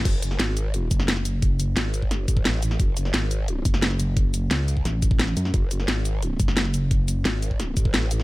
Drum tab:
CC |x---------------|----------------|----------------|----------------|
HH |x-x-x-x-x-x-x-x-|x-x-x-o-x-x-x-x-|x-x-x-x-x-x-x-x-|x-x-x-o-x-x-x-x-|
SH |--x---x---x---x-|--x---x---x---x-|--x---x---x---x-|--x---x---x---x-|
SD |---oo------ooo--|----o---o---o--o|---oo------ooo--|----o---o---oo-o|
BD |o---------o-----|o------o--oo----|o---------o-----|o------o--oo----|

CC |----------------|----------------|
HH |x-x-x-x-x-x-x-x-|x-x-x-o-x-x-x-x-|
SH |--x---x---x---x-|--x---x---x---x-|
SD |---oo------ooo--|----o---o---o--o|
BD |o---------o-----|o------o--oo----|